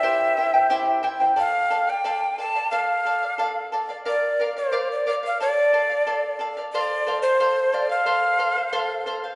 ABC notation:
X:1
M:2/4
L:1/16
Q:1/4=90
K:F
V:1 name="Charango"
[EGceg]2 [Eceg] [Ecg] [EGceg]2 [Eceg] [Ecg] | [Adf]2 [Adf] [df] [Adf]2 [Adf] [df] | [Adf]2 [Adf] [df] [Adf]2 [Adf] [df] | [Bdf]2 [Bdf] [df] [Bdf]2 [Bdf] [df] |
[Adf]2 [Adf] [df] [Adf]2 [Adf] [df] | [Acf]2 [Acf] [cf] [Acf]2 [Acf] [cf] | [Acf]2 [Acf] [cf] [Acf]2 [Acf] [cf] |]
V:2 name="Quena"
e6 z2 | f3 g3 a2 | f6 z2 | d3 c2 d d f |
d6 z2 | d3 c3 d f- | f6 z2 |]